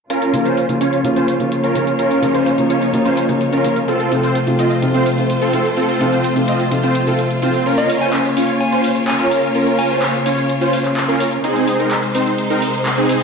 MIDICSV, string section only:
0, 0, Header, 1, 2, 480
1, 0, Start_track
1, 0, Key_signature, -5, "minor"
1, 0, Tempo, 472441
1, 103, Time_signature, 4, 2, 24, 8
1, 13444, End_track
2, 0, Start_track
2, 0, Title_t, "String section"
2, 0, Program_c, 0, 48
2, 103, Note_on_c, 0, 49, 70
2, 103, Note_on_c, 0, 58, 69
2, 103, Note_on_c, 0, 65, 67
2, 103, Note_on_c, 0, 73, 79
2, 2004, Note_off_c, 0, 65, 0
2, 2022, Note_on_c, 0, 63, 68
2, 3904, Note_off_c, 0, 49, 0
2, 3904, Note_off_c, 0, 58, 0
2, 3904, Note_off_c, 0, 73, 0
2, 3923, Note_off_c, 0, 63, 0
2, 3943, Note_on_c, 0, 48, 76
2, 3943, Note_on_c, 0, 65, 67
2, 3943, Note_on_c, 0, 72, 84
2, 3944, Note_on_c, 0, 57, 69
2, 7744, Note_off_c, 0, 48, 0
2, 7744, Note_off_c, 0, 72, 0
2, 7745, Note_off_c, 0, 57, 0
2, 7783, Note_on_c, 0, 58, 67
2, 7783, Note_on_c, 0, 73, 78
2, 7784, Note_on_c, 0, 49, 74
2, 11582, Note_off_c, 0, 65, 0
2, 11585, Note_off_c, 0, 49, 0
2, 11585, Note_off_c, 0, 58, 0
2, 11585, Note_off_c, 0, 73, 0
2, 11624, Note_on_c, 0, 48, 72
2, 11624, Note_on_c, 0, 63, 69
2, 11625, Note_on_c, 0, 56, 69
2, 11625, Note_on_c, 0, 72, 84
2, 13444, Note_off_c, 0, 48, 0
2, 13444, Note_off_c, 0, 56, 0
2, 13444, Note_off_c, 0, 63, 0
2, 13444, Note_off_c, 0, 72, 0
2, 13444, End_track
0, 0, End_of_file